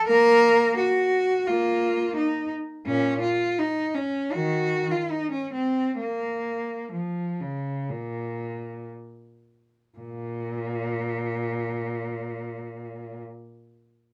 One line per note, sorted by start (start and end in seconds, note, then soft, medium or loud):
0.08 0.73 A#3 medium
0.08 0.76 A#4 loud
0.77 1.45 F#4 medium
1.47 2.12 A#3 medium
1.47 2.16 F4 medium
2.17 2.50 D#4 medium
2.87 3.20 A#2 medium
2.87 3.20 C#4 medium
3.22 3.58 F4 medium
3.58 3.96 D#4 medium
3.95 4.33 C#4 medium
4.32 4.87 D#3 medium
4.32 4.91 F#4 medium
4.91 5.12 F4 medium
5.11 5.32 D#4 medium
5.32 5.53 C#4 medium
5.54 5.98 C4 medium
5.99 6.91 A#3 medium
6.92 7.40 F3 soft
7.41 7.90 C#3 soft
7.90 8.91 A#2 medium
9.98 13.21 A#2 medium